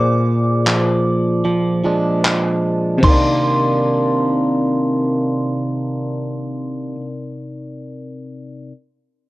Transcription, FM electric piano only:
0.00 2.98 A#2 medium
0.00 2.99 A#3 medium
0.00 2.99 G#4 medium
0.00 3.00 C5 medium
0.00 3.01 D5 medium
2.98 6.90 C3 medium
2.98 6.93 C4 medium
3.04 6.96 D#4 medium
3.04 6.99 A#4 medium
3.10 7.02 D5 medium

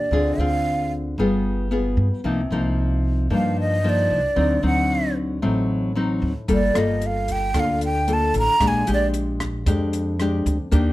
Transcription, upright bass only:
0.11 0.36 D2 medium
0.38 1.14 D2 medium
1.18 1.94 G1 medium
1.97 2.10 G2 medium
2.24 2.49 C2 medium
2.51 3.26 C2 medium
3.30 4.06 G2 medium
4.10 4.22 C2 medium
4.37 4.61 D2 medium
4.63 5.39 D2 medium
5.43 6.18 A1 loud
6.22 6.34 D2 medium
6.49 6.74 G1 medium
6.75 7.51 G1 medium
7.54 8.30 D2 loud
8.34 8.47 A1 medium
8.60 8.85 A#1 medium
8.88 9.63 A#1 medium
9.66 10.42 F2 loud
10.46 10.59 D2 medium
10.72 10.93 D#2 medium

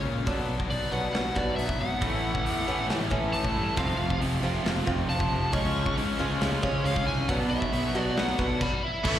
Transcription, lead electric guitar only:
0.70 0.91 D5 loud
0.92 1.12 F#5 medium
1.14 1.34 F#5 loud
1.36 1.56 D5 medium
1.56 1.80 E5 medium
1.79 2.85 F#5 medium
3.33 3.78 A5 loud
3.78 4.19 F5 medium
5.09 5.55 A5 medium
5.53 5.94 C#6 loud
6.63 6.86 C#5 medium
6.84 7.05 F5 medium
7.07 7.27 G#5 medium
7.29 7.35 F#5 medium
7.50 8.02 E5 medium
8.02 8.18 D5 medium
8.17 8.62 F#5 loud
8.61 8.84 D5 medium
8.61 9.02 B5 medium
8.84 9.19 E5 medium

